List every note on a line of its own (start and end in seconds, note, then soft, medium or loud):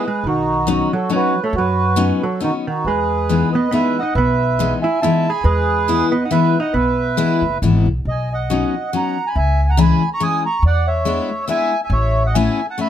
0.05 0.25 G#3 medium
0.05 0.24 G#4 medium
0.05 0.26 B4 medium
0.24 0.80 B1 medium
0.24 0.88 D#3 medium
0.24 0.88 D#4 medium
0.28 0.91 F#4 medium
0.67 0.91 F#3 medium
0.67 0.91 B3 medium
0.67 0.91 C#4 medium
0.67 0.91 D#4 medium
0.93 1.11 F#3 medium
0.93 1.10 F#4 medium
0.93 1.13 A4 medium
1.09 1.34 F#3 medium
1.09 1.39 F#3 medium
1.09 1.34 B3 soft
1.09 1.34 C#4 medium
1.09 1.34 D#4 medium
1.15 1.40 F#4 medium
1.15 1.43 B4 loud
1.44 1.55 A3 medium
1.44 1.55 A4 medium
1.44 1.55 C#5 medium
1.53 2.10 F#2 medium
1.53 2.18 F#4 medium
1.57 2.19 F#3 medium
1.57 2.25 B4 medium
1.96 2.21 F#3 medium
1.96 2.21 B3 medium
1.96 2.21 C#4 medium
1.96 2.21 D#4 medium
2.21 2.41 F#3 medium
2.21 2.40 F#4 soft
2.21 2.43 A4 medium
2.40 2.50 D#3 medium
2.40 2.65 F#3 medium
2.40 2.65 B3 soft
2.40 2.65 C#4 soft
2.40 2.65 D#4 medium
2.40 2.54 D#4 medium
2.40 2.54 F#4 medium
2.67 2.85 D#3 medium
2.67 2.85 D#4 medium
2.67 2.87 F#4 medium
2.85 3.42 E2 medium
2.85 3.50 G#3 medium
2.85 3.49 G#4 medium
2.85 3.51 B4 loud
3.29 3.53 E3 medium
3.29 3.53 G#3 medium
3.29 3.53 B3 medium
3.29 3.53 D#4 medium
3.52 3.70 B3 medium
3.52 3.71 B4 medium
3.52 3.73 D#5 medium
3.71 3.96 E3 medium
3.71 3.96 G#3 soft
3.71 3.99 B3 medium
3.71 3.96 B3 soft
3.71 3.96 D#4 medium
3.71 4.00 B4 medium
3.71 4.03 E5 loud
3.99 4.15 D#4 medium
3.99 4.14 D#5 medium
3.99 4.14 F#5 medium
4.15 4.71 B1 medium
4.15 4.79 B3 medium
4.15 4.78 B4 medium
4.15 4.78 E5 medium
4.59 4.83 E3 medium
4.59 4.83 G#3 medium
4.59 4.83 B3 medium
4.59 4.83 D#4 medium
4.82 5.01 E4 medium
4.82 5.00 E5 medium
4.82 5.02 G#5 medium
5.02 5.26 E3 medium
5.02 5.26 G#3 medium
5.02 5.26 B3 soft
5.02 5.26 D#4 medium
5.02 5.29 E4 medium
5.02 5.28 E5 loud
5.02 5.31 A5 loud
5.29 5.43 G#4 medium
5.29 5.43 G#5 medium
5.29 5.44 B5 loud
5.44 6.00 E2 medium
5.44 6.07 G#3 medium
5.44 6.07 G#4 medium
5.44 6.10 B4 loud
5.88 6.11 E3 medium
5.88 6.11 G#3 medium
5.88 6.11 B3 medium
5.88 6.12 E4 medium
6.10 6.24 B3 medium
6.10 6.23 B4 medium
6.10 6.25 D#5 medium
6.25 6.31 D#4 medium
6.25 6.31 F#5 medium
6.31 6.54 E3 medium
6.31 6.55 G#3 medium
6.31 6.55 B3 medium
6.31 6.58 B3 medium
6.31 6.55 E4 medium
6.31 6.58 B4 medium
6.31 6.61 E5 loud
6.60 6.73 D#4 medium
6.60 6.73 D#5 medium
6.60 6.75 F#5 medium
6.74 7.18 B1 medium
6.74 7.58 B3 medium
6.74 7.58 B4 medium
6.74 7.58 E5 loud
7.17 7.42 E3 medium
7.17 7.41 G#3 medium
7.17 7.42 B3 medium
7.17 7.42 E4 medium
7.42 7.60 F#1 medium
7.62 7.84 G#1 medium
7.62 7.86 E3 medium
7.62 7.87 G#3 soft
7.62 7.87 B3 medium
7.62 7.87 E4 medium
7.86 8.04 B1 medium
8.05 8.62 B1 medium
8.05 8.29 D#5 medium
8.11 8.33 G#5 medium
8.32 8.90 D#5 medium
8.32 8.93 F#5 medium
8.50 8.74 F#3 medium
8.50 8.74 B3 medium
8.50 8.74 C#4 medium
8.50 8.74 D#4 medium
8.93 9.16 F#3 medium
8.93 9.17 B3 soft
8.93 9.17 C#4 medium
8.93 9.17 D#4 medium
8.93 9.25 F#5 medium
8.93 9.29 A#5 medium
9.27 9.35 G#5 medium
9.27 9.37 B5 medium
9.36 9.91 C#2 medium
9.36 9.67 E5 medium
9.36 9.71 G#5 loud
9.69 9.78 F#5 medium
9.69 9.80 A#5 medium
9.77 10.01 E3 medium
9.77 10.01 G#3 medium
9.77 10.01 C#4 medium
9.77 10.02 E4 medium
9.77 10.09 G#5 medium
9.77 10.10 B5 medium
10.13 10.21 A#5 medium
10.13 10.23 C#6 medium
10.20 10.44 E3 medium
10.20 10.44 G#3 medium
10.20 10.44 C#4 medium
10.20 10.44 E4 soft
10.20 10.43 G#5 medium
10.20 10.43 D#6 loud
10.46 10.63 A#5 medium
10.46 10.63 C#6 medium
10.62 11.18 E2 medium
10.62 10.86 D5 medium
10.67 10.89 F#5 loud
10.87 11.45 C#5 medium
10.87 11.48 E5 medium
11.05 11.29 G#3 medium
11.05 11.29 B3 medium
11.05 11.29 D4 medium
11.05 11.29 E4 medium
11.48 11.72 G#3 medium
11.48 11.72 B3 medium
11.48 11.72 D4 soft
11.48 11.72 E4 medium
11.48 11.80 E5 medium
11.48 11.81 G#5 loud
11.84 11.91 E5 medium
11.84 11.94 G#5 medium
11.90 12.47 A1 medium
11.90 12.23 C#5 medium
11.90 12.26 E5 loud
12.26 12.35 D#5 medium
12.26 12.36 F#5 medium
12.35 12.59 A3 medium
12.35 12.59 B3 medium
12.35 12.59 C#4 medium
12.35 12.59 E4 medium
12.35 12.66 E5 medium
12.35 12.66 G#5 medium
12.70 12.79 F#5 medium
12.70 12.80 A5 medium
12.78 12.89 A3 medium
12.78 12.89 B3 medium
12.78 12.89 C#4 medium
12.78 12.89 E4 soft
12.78 12.89 E5 medium
12.78 12.89 B5 loud